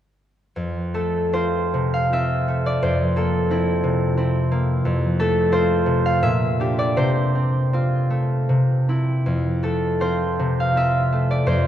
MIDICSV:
0, 0, Header, 1, 2, 480
1, 0, Start_track
1, 0, Key_signature, -1, "major"
1, 0, Tempo, 748130
1, 363, Time_signature, 3, 2, 24, 8
1, 848, Tempo, 797872
1, 1328, Tempo, 684151
1, 4208, Tempo, 756620
1, 7088, Tempo, 692042
1, 7719, End_track
2, 0, Start_track
2, 0, Title_t, "Harp"
2, 0, Program_c, 0, 46
2, 359, Note_on_c, 0, 41, 35
2, 604, Note_on_c, 0, 57, 33
2, 607, Note_on_c, 0, 69, 43
2, 853, Note_on_c, 0, 60, 32
2, 856, Note_on_c, 0, 72, 54
2, 858, Note_on_c, 0, 65, 33
2, 1098, Note_on_c, 0, 48, 34
2, 1218, Note_on_c, 0, 77, 49
2, 1325, Note_off_c, 0, 60, 0
2, 1329, Note_off_c, 0, 65, 0
2, 1332, Note_on_c, 0, 60, 30
2, 1336, Note_on_c, 0, 76, 56
2, 1337, Note_on_c, 0, 65, 32
2, 1573, Note_off_c, 0, 57, 0
2, 1581, Note_on_c, 0, 57, 29
2, 1708, Note_on_c, 0, 74, 54
2, 1814, Note_off_c, 0, 72, 0
2, 1815, Note_off_c, 0, 41, 0
2, 1822, Note_on_c, 0, 41, 42
2, 1824, Note_on_c, 0, 72, 51
2, 1843, Note_off_c, 0, 57, 0
2, 1844, Note_off_c, 0, 48, 0
2, 1844, Note_off_c, 0, 69, 0
2, 1844, Note_off_c, 0, 77, 0
2, 1846, Note_off_c, 0, 65, 0
2, 1910, Note_off_c, 0, 74, 0
2, 1958, Note_off_c, 0, 76, 0
2, 2056, Note_on_c, 0, 58, 34
2, 2062, Note_on_c, 0, 69, 48
2, 2293, Note_off_c, 0, 60, 0
2, 2300, Note_on_c, 0, 60, 33
2, 2304, Note_on_c, 0, 64, 39
2, 2531, Note_on_c, 0, 48, 34
2, 2761, Note_off_c, 0, 60, 0
2, 2766, Note_off_c, 0, 64, 0
2, 2769, Note_on_c, 0, 60, 34
2, 2774, Note_on_c, 0, 64, 33
2, 3000, Note_off_c, 0, 58, 0
2, 3009, Note_on_c, 0, 58, 37
2, 3236, Note_off_c, 0, 41, 0
2, 3244, Note_on_c, 0, 41, 44
2, 3259, Note_off_c, 0, 48, 0
2, 3263, Note_off_c, 0, 58, 0
2, 3264, Note_off_c, 0, 64, 0
2, 3477, Note_off_c, 0, 69, 0
2, 3485, Note_on_c, 0, 57, 40
2, 3487, Note_on_c, 0, 69, 59
2, 3704, Note_off_c, 0, 60, 0
2, 3707, Note_off_c, 0, 72, 0
2, 3712, Note_on_c, 0, 60, 37
2, 3715, Note_on_c, 0, 65, 41
2, 3717, Note_on_c, 0, 72, 64
2, 3953, Note_on_c, 0, 48, 38
2, 4090, Note_on_c, 0, 77, 57
2, 4208, Note_on_c, 0, 46, 48
2, 4210, Note_on_c, 0, 76, 64
2, 4225, Note_off_c, 0, 48, 0
2, 4226, Note_off_c, 0, 60, 0
2, 4227, Note_off_c, 0, 72, 0
2, 4228, Note_off_c, 0, 41, 0
2, 4228, Note_off_c, 0, 65, 0
2, 4230, Note_off_c, 0, 57, 0
2, 4230, Note_off_c, 0, 69, 0
2, 4231, Note_off_c, 0, 77, 0
2, 4445, Note_on_c, 0, 62, 34
2, 4451, Note_on_c, 0, 67, 38
2, 4564, Note_on_c, 0, 74, 58
2, 4678, Note_on_c, 0, 48, 41
2, 4681, Note_on_c, 0, 72, 57
2, 4701, Note_off_c, 0, 46, 0
2, 4702, Note_off_c, 0, 74, 0
2, 4703, Note_off_c, 0, 62, 0
2, 4704, Note_off_c, 0, 67, 0
2, 4814, Note_off_c, 0, 76, 0
2, 4923, Note_on_c, 0, 60, 29
2, 5159, Note_off_c, 0, 60, 0
2, 5164, Note_on_c, 0, 60, 32
2, 5170, Note_on_c, 0, 65, 34
2, 5400, Note_on_c, 0, 57, 32
2, 5638, Note_off_c, 0, 48, 0
2, 5645, Note_on_c, 0, 48, 38
2, 5663, Note_off_c, 0, 57, 0
2, 5667, Note_off_c, 0, 65, 0
2, 5890, Note_off_c, 0, 60, 0
2, 5896, Note_on_c, 0, 60, 26
2, 5899, Note_on_c, 0, 64, 31
2, 6133, Note_on_c, 0, 41, 35
2, 6149, Note_off_c, 0, 48, 0
2, 6152, Note_off_c, 0, 64, 0
2, 6367, Note_on_c, 0, 57, 31
2, 6372, Note_on_c, 0, 69, 47
2, 6598, Note_off_c, 0, 60, 0
2, 6602, Note_off_c, 0, 72, 0
2, 6605, Note_on_c, 0, 60, 30
2, 6610, Note_on_c, 0, 72, 51
2, 6614, Note_on_c, 0, 65, 35
2, 6853, Note_on_c, 0, 48, 34
2, 6984, Note_on_c, 0, 77, 51
2, 7078, Note_off_c, 0, 60, 0
2, 7085, Note_off_c, 0, 65, 0
2, 7086, Note_on_c, 0, 60, 31
2, 7090, Note_on_c, 0, 65, 33
2, 7093, Note_on_c, 0, 76, 56
2, 7330, Note_off_c, 0, 57, 0
2, 7338, Note_on_c, 0, 57, 34
2, 7464, Note_on_c, 0, 74, 57
2, 7565, Note_off_c, 0, 41, 0
2, 7568, Note_off_c, 0, 72, 0
2, 7573, Note_on_c, 0, 41, 41
2, 7576, Note_on_c, 0, 72, 55
2, 7592, Note_off_c, 0, 57, 0
2, 7592, Note_off_c, 0, 65, 0
2, 7594, Note_off_c, 0, 48, 0
2, 7594, Note_off_c, 0, 69, 0
2, 7598, Note_off_c, 0, 77, 0
2, 7659, Note_off_c, 0, 74, 0
2, 7701, Note_off_c, 0, 76, 0
2, 7719, Note_off_c, 0, 41, 0
2, 7719, Note_off_c, 0, 60, 0
2, 7719, Note_off_c, 0, 72, 0
2, 7719, End_track
0, 0, End_of_file